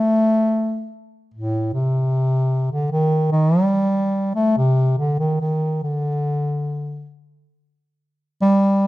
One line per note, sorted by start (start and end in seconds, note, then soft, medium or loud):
0.00 0.92 A3 medium
1.34 1.72 A2 medium
1.74 2.70 C3 medium
2.72 2.91 D3 medium
2.92 3.31 D#3 medium
3.32 3.65 D#3 medium
3.65 4.33 G3 medium
4.35 4.56 A3 medium
4.57 4.96 C3 medium
4.98 5.18 D3 medium
5.19 5.39 D#3 medium
5.41 5.79 D#3 medium
5.83 7.09 D3 medium
8.42 8.87 G3 medium